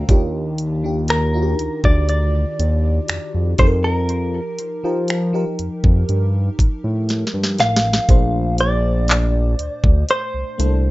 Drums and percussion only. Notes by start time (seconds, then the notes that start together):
0.09 kick, closed hi-hat
0.58 closed hi-hat
1.08 finger snap, closed hi-hat
1.59 closed hi-hat
1.84 kick
2.09 closed hi-hat
2.60 closed hi-hat
3.08 finger snap, closed hi-hat
3.58 kick, closed hi-hat
4.09 closed hi-hat
4.59 closed hi-hat
5.08 finger snap, closed hi-hat
5.59 closed hi-hat
5.84 kick
6.09 closed hi-hat
6.59 kick, closed hi-hat
7.09 snare, closed hi-hat
7.27 snare
7.43 snare
7.58 snare, closed hi-hat
7.76 snare
7.93 snare
8.09 kick, closed hi-hat
8.58 closed hi-hat
9.08 clap, closed hi-hat
9.59 closed hi-hat
9.84 kick
10.09 closed hi-hat
10.60 closed hi-hat